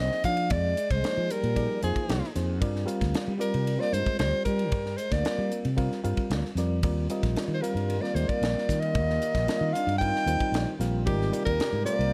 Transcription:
Already playing: reed electric piano F3 A#3 D#4 G#4 C5
0.00 trombone C4, soprano saxophone D#5
0.11 muted fretless electric bass stroke, snare
0.24 fretless electric bass F3, trombone D4, soprano saxophone F5, kick, snare, hi-hat pedal, ride
0.37 ride
0.50 fretless electric bass F2, trombone G#3, soprano saxophone D5, kick, ride
0.77 hi-hat pedal, ride
0.91 fretless electric bass C2, trombone G#3, soprano saxophone C5, kick, ride
1.03 reed electric piano F3 A#3 D#4 G#4 C5, muted fretless electric bass stroke, snare, ride
1.18 fretless electric bass F3
1.30 trombone G3, soprano saxophone A#4, hi-hat pedal, ride
1.43 fretless electric bass A#2, ride
1.55 reed electric piano F3 A#3 D#4 G#4 D5, kick, ride
1.82 fretless electric bass F2, reed electric piano F3 A#3 D#4 G#4 C5, trombone F3, soprano saxophone G#4, hi-hat pedal, ride
1.96 muted fretless electric bass stroke, kick, ride
2.09 fretless electric bass C2, snare, ride
2.22 muted fretless electric bass stroke, snare
2.35 fretless electric bass F2, reed electric piano F3 A#3 D#4 G#4 C5, snare, hi-hat pedal, ride
2.60 fretless electric bass G2, reed electric piano G3 C4 F4 A#4 D5, kick, ride
2.76 snare
2.85 reed electric piano G3 C4 F4 A#4 F5, hi-hat pedal, ride
3.01 fretless electric bass D2, kick, snare, ride
3.14 muted fretless electric bass stroke, snare, ride
3.28 fretless electric bass G3
3.38 reed electric piano G3 C4 F4 A#4 D5, trombone G3, soprano saxophone A#4, hi-hat pedal, ride
3.54 fretless electric bass C3, ride
3.67 ride
3.78 reed electric piano G3 C4 F4 A#4 C5, trombone A#3, soprano saxophone D5, snare
3.93 fretless electric bass G2, trombone G#3, soprano saxophone C5, hi-hat pedal, ride
4.06 muted fretless electric bass stroke, kick, ride
4.19 fretless electric bass D2, trombone G3, soprano saxophone C5, snare, ride
4.34 muted fretless electric bass stroke
4.45 fretless electric bass G3, trombone G3, soprano saxophone A#4, kick, hi-hat pedal, ride
4.59 ride
4.72 fretless electric bass G2, kick, ride
4.86 snare
4.97 trombone G#3, soprano saxophone C5, hi-hat pedal, ride
5.11 fretless electric bass D2, trombone A#3, soprano saxophone D5, kick, snare, ride
5.23 reed electric piano G3 C4 F4 A#4 D5, snare, ride
5.39 fretless electric bass G3
5.51 hi-hat pedal, ride
5.65 fretless electric bass C3, ride
5.76 reed electric piano G3 C4 F4 A#4 F5, kick, ride
5.92 snare
6.04 fretless electric bass G2, reed electric piano G3 C4 F4 A#4 F5, hi-hat pedal, ride
6.17 kick, ride
6.30 fretless electric bass D2, snare, ride
6.44 muted fretless electric bass stroke, snare
6.55 fretless electric bass F2, reed electric piano G3 C4 F4 A#4 D5, snare, hi-hat pedal, ride
6.83 fretless electric bass D#2, analog synth pad D#3 G3 F4, reed electric piano G3 C4 F4 A#4 D5, kick, ride
7.10 reed electric piano G3 C4 F4 A#4 D#5, hi-hat pedal, ride
7.23 fretless electric bass A#1, kick, snare, ride
7.36 muted fretless electric bass stroke, snare, ride
7.48 fretless electric bass D#3
7.54 trombone G#3, soprano saxophone C5
7.61 reed electric piano G3 C4 F4 A#4 F5, soprano saxophone A#4, hi-hat pedal, ride
7.66 trombone G3
7.75 fretless electric bass G2, ride
7.90 ride
8.01 reed electric piano G3 C4 F4 A#4 D5, trombone A#3, soprano saxophone D5, snare
8.15 fretless electric bass D#2, trombone G#3, soprano saxophone C5, hi-hat pedal, ride
8.28 trombone A#3, soprano saxophone D5, kick, ride
8.42 fretless electric bass A#1, snare, ride
8.55 muted fretless electric bass stroke, snare
8.69 fretless electric bass D#3, kick, snare, hi-hat pedal, ride
8.80 trombone A#3, soprano saxophone D#5, ride
8.95 fretless electric bass D#2, kick, ride
9.10 snare
9.22 hi-hat pedal, ride
9.35 fretless electric bass A#1, kick, snare, ride
9.47 reed electric piano G3 C4 F4 A#4 D#5, muted fretless electric bass stroke, snare, ride
9.61 fretless electric bass D#3
9.73 trombone D4, soprano saxophone F5, hi-hat pedal, ride
9.87 fretless electric bass G2, ride
9.98 reed electric piano G3 C4 F4 A#4 F5, trombone D#4, soprano saxophone G5, kick, ride
10.16 snare
10.26 fretless electric bass D#2, reed electric piano G3 C4 F4 A#4 C5, hi-hat pedal, ride
10.40 kick, ride
10.52 fretless electric bass A#1, snare, ride
10.65 muted fretless electric bass stroke
10.79 fretless electric bass A#1, reed electric piano G3 C4 F4 A#4 F5, snare, hi-hat pedal, ride
11.06 fretless electric bass G#1, analog synth pad C3 A#3 G4, trombone D#3, reed electric piano G3 C4 F4 A#4 D5, soprano saxophone G4, kick, ride
11.21 snare
11.31 reed electric piano G3 C4 F4 A#4 D5, hi-hat pedal, ride
11.45 fretless electric bass D#2, trombone G3, soprano saxophone A#4, kick, ride
11.60 muted fretless electric bass stroke, snare, ride
11.73 fretless electric bass G#2
11.85 reed electric piano G3 C4 F4 A#4 C5, trombone A#3, soprano saxophone D5, hi-hat pedal, ride
11.99 fretless electric bass C2, ride

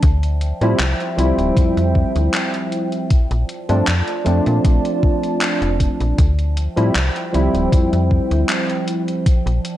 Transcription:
0.03 fm bass D2, ambient pad F3 C5 E5 G5, kick, closed hi-hat
0.23 closed hi-hat
0.41 closed hi-hat
0.61 fm bass A2, tine electric piano F3 G3 C4 E4, closed hi-hat
0.79 fm bass C2, clap, closed hi-hat
1.00 closed hi-hat
1.17 fm bass C2, tine electric piano F3 G3 C4 E4, closed hi-hat
1.38 fm bass D1, closed hi-hat
1.57 fm bass F2, kick, closed hi-hat
1.77 fm bass F2, closed hi-hat
1.95 kick
2.16 fm bass D2, closed hi-hat
2.34 clap, closed hi-hat
2.54 closed hi-hat
2.72 closed hi-hat
2.92 closed hi-hat
3.10 fm bass A#1, ambient pad F4 D5 A5, kick, closed hi-hat
3.31 fm bass A#1, closed hi-hat
3.49 closed hi-hat
3.69 fm bass G2, tine electric piano F3 A3 C4 D4, closed hi-hat
3.87 fm bass F2, clap, closed hi-hat
4.08 closed hi-hat
4.24 fm bass F2, tine electric piano F3 A3 C4 D4, closed hi-hat
4.46 fm bass A#2, closed hi-hat
4.65 fm bass A#1, kick, closed hi-hat
4.85 closed hi-hat
5.03 kick
5.23 closed hi-hat
5.41 clap, closed hi-hat
5.62 fm bass F1, closed hi-hat
5.80 kick, closed hi-hat
6.01 fm bass A#1, closed hi-hat
6.18 fm bass D2, ambient pad F3 C5 E5 G5, kick, closed hi-hat
6.39 closed hi-hat
6.57 closed hi-hat
6.76 fm bass A2, tine electric piano F3 G3 C4 E4, closed hi-hat
6.95 fm bass C2, clap, closed hi-hat
7.16 closed hi-hat
7.32 fm bass C2, tine electric piano F3 G3 C4 E4, closed hi-hat
7.54 fm bass D1, closed hi-hat
7.72 fm bass F2, kick, closed hi-hat
7.93 fm bass F2, closed hi-hat
8.11 kick
8.31 fm bass D2, closed hi-hat
8.49 clap, closed hi-hat
8.70 closed hi-hat
8.88 closed hi-hat
9.08 closed hi-hat
9.26 fm bass A#1, ambient pad D5 A5, kick, closed hi-hat
9.46 fm bass A#1, closed hi-hat
9.65 closed hi-hat

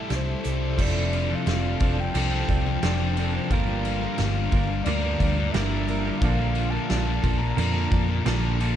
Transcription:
Already playing: clean electric guitar E3 G3 A3 A4, twelve-string acoustic guitar G3 E4 A4, distorted electric guitar A3 E4 A4, string machine A4 E5 C6, soft synth lead E5
0.09 picked electric bass C2, distorted electric guitar G3, twelve-string acoustic guitar C4, clean electric guitar E4, snare, closed hi-hat
0.16 soft synth lead C5
0.43 picked electric bass C2, clean electric guitar G3, distorted electric guitar E4, twelve-string acoustic guitar A4, closed hi-hat
0.48 soft synth lead C5
0.77 picked electric bass F1, distorted electric guitar F2 C3 F3, clean electric guitar F3 C4 D4 A4, kick, crash
0.81 soft synth lead D5
0.95 distorted electric guitar C3 F3
1.13 crash
1.28 distorted electric guitar C3 F3, clean electric guitar C4 D4 A4
1.35 soft synth lead F5
1.46 picked electric bass F1, distorted electric guitar F2 C3 F3, twelve-string acoustic guitar A4, snare, crash
1.80 picked electric bass F1, distorted electric guitar F2 C3 F3, clean electric guitar F3 C4 D4 A4, kick, crash
1.98 soft synth lead G5, muted distorted electric guitar stroke, muted clean electric guitar stroke
2.14 picked electric bass C2, clean electric guitar F3 C4 D4 A4, crash
2.31 distorted electric guitar C3 F3, clean electric guitar C4 D4 A4
2.48 picked electric bass C2, distorted electric guitar F2 C3 F3, clean electric guitar F3 C4 D4 A4, kick, crash
2.66 muted distorted electric guitar stroke, muted clean electric guitar stroke
2.80 picked electric bass F1, distorted electric guitar F2 C3 F3, clean electric guitar F3 C4, snare, crash
2.85 clean electric guitar D4 A4
3.15 distorted electric guitar F2 C3 F3, clean electric guitar F3 C4 D4, crash
3.20 clean electric guitar A4
3.34 clean electric guitar C4 D4 A4
3.49 picked electric bass G1, distorted electric guitar G2 D3 G3, clean electric guitar G2 D3 F3 A#3, soft synth lead F5, kick, crash
3.54 clean electric guitar D4 A#4
3.66 distorted electric guitar D3 G3
3.85 crash
3.99 distorted electric guitar D3 G3, clean electric guitar A#4
4.03 clean electric guitar F3 A#3 D4
4.17 picked electric bass G1, distorted electric guitar G2 D3 G3, twelve-string acoustic guitar D4, snare, crash
4.51 picked electric bass G1, distorted electric guitar G2 D3 G3, clean electric guitar F3 A#3, kick, crash
4.55 clean electric guitar D4 A#4
4.68 muted distorted electric guitar stroke, muted clean electric guitar stroke
4.84 picked electric bass D2, clean electric guitar G2 D3 F3, soft synth lead D5, crash
4.88 clean electric guitar A#3 D4 A#4
5.02 distorted electric guitar D3 G3, clean electric guitar A#4
5.06 clean electric guitar F3 A#3 D4
5.19 picked electric bass D2, distorted electric guitar G2 D3 G3, clean electric guitar F3 A#3, kick, crash
5.23 clean electric guitar D4 A#4
5.37 muted distorted electric guitar stroke, muted clean electric guitar stroke
5.51 picked electric bass G1, distorted electric guitar G2 D3, clean electric guitar G2 D3 F3, soft synth lead E5, snare, crash
5.55 distorted electric guitar G3, clean electric guitar A#3 D4 A#4
5.88 distorted electric guitar G2 D3 G3, clean electric guitar F3 A#3 D4 A#4, crash
6.05 clean electric guitar F3 A#3 D4 A#4
6.18 soft synth lead F5, crash
6.22 picked electric bass A#1, distorted electric guitar A#2 F3 A#3, clean electric guitar A#2 D3 F3 A#3 D4 A4, kick
6.39 distorted electric guitar F3 A#3
6.55 crash
6.70 distorted electric guitar A#3, clean electric guitar D4 A4, soft synth lead A5
6.74 distorted electric guitar F3, clean electric guitar F3 A#3
6.89 picked electric bass A#1, distorted electric guitar A#2 F3 A#3, twelve-string acoustic guitar D4, snare, crash
7.23 picked electric bass A#1, distorted electric guitar A#2 F3 A#3, clean electric guitar F3 A#3 D4 A4, kick, crash
7.38 soft synth lead A#5, muted clean electric guitar stroke, muted distorted electric guitar stroke
7.57 picked electric bass F2, clean electric guitar A#2 D3 F3 A#3 D4 A4, crash
7.73 clean electric guitar F3 A#3 D4 A4, distorted electric guitar F3 A#3
7.91 picked electric bass F2, distorted electric guitar A#2 F3 A#3, clean electric guitar F3 A#3 D4 A4, kick, crash
8.08 muted distorted electric guitar stroke, muted clean electric guitar stroke
8.24 picked electric bass A#1, distorted electric guitar A#2 F3 A#3, clean electric guitar A#2 D3 F3 A#3 D4 A4, snare, crash
8.58 distorted electric guitar A#2 F3 A#3, clean electric guitar F3 A#3 D4 A4, crash

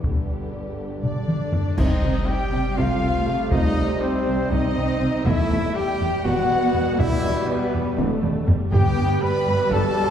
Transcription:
Already playing: violin section B3, french horn section B3
0.04 double bass section G1, cello section G2, viola section D3, trombone section D3 G3, french horn section G4, violin section G4, taiko
1.03 trumpet D4, french horn section D4, violin section D5, flute D5, taiko low-mid
1.28 taiko mid
1.53 taiko low
1.77 double bass section C2, cello section C3, trombone section C3 G3, viola section C4, french horn section D#4, trumpet D#4, violin section D#5, flute D#5, concert bass drum, taiko, crash
2.03 double bass section C2, cello section C3
2.26 viola section G3, french horn section G4, trumpet G4, violin section G5, flute G5
2.52 double bass section C2, cello section C3
2.76 double bass section C2, cello section C3, viola section A3, french horn section F4, trumpet F4, violin section F5, flute F5
3.02 double bass section C2, cello section C3
3.27 double bass section C2, cello section C3
3.51 double bass section C2, cello section C3, trumpet D#4, french horn section D#4, flute D#5, violin section D#5, taiko
3.77 double bass section C2, cello section C3
4.00 viola section G3, french horn section C4, trumpet C4, violin section C5, flute C5
4.27 double bass section C2, cello section C3
4.50 double bass section C2, cello section C3, viola section C4, trumpet D#4, french horn section D#4, violin section D#5, flute D#5
4.76 double bass section C2, cello section C3
5.01 double bass section C2, cello section C3
5.25 double bass section E1, cello section E2, trombone section B2 G3, viola section A3, trumpet E4, french horn section E4, violin section E5, flute F#5, taiko
5.29 flute E5
5.51 double bass section E1, cello section E2
5.75 viola section G3, french horn section G4, trumpet G4, violin section G5, flute G5
6.01 double bass section E1, cello section E2
6.24 double bass section E1, cello section E2, viola section B3, french horn section F#4, trumpet F#4, violin section F#5, flute F#5
6.50 double bass section E1, cello section E2
6.74 double bass section E1, cello section E2
6.99 double bass section E1, cello section E2, viola section G3, french horn section E4, trumpet E4, flute E5, violin section E5, taiko
7.24 double bass section E1, cello section E2
7.47 french horn section B3, trumpet B3, violin section B4, flute B4
7.52 violin section B4
7.74 double bass section E1, cello section E2
7.98 double bass section E1, cello section E2, viola section A3, taiko high
8.23 double bass section E1, cello section E2, taiko mid
8.48 double bass section E1, cello section E2, viola section G3, taiko low
8.72 double bass section G1, timpani G2, cello section G2, trombone section B2 G3, viola section B3, french horn section G4, trumpet G4, violin section G5, flute G5, taiko
8.97 double bass section G1, cello section G2
9.21 viola section G3, trumpet B4, french horn section B4, flute B5, violin section B5
9.47 double bass section G1, cello section G2
9.70 double bass section G1, cello section G2, french horn section A4, trumpet A4, flute A5, violin section A5
9.96 double bass section G1, cello section G2

